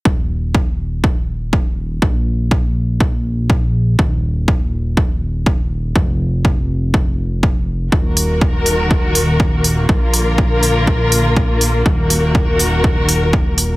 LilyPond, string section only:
\new Staff \with { instrumentName = "String section" } { \time 4/4 \key ees \minor \tempo 4 = 122 << { r1 | r1 | r1 | r1 |
<ees ges' bes'>1 | <d f' bes'>1 | <ees ges' bes'>1 | } \\ { r1 | r1 | r1 | r1 |
bes1~ | bes1~ | bes1 | } >> }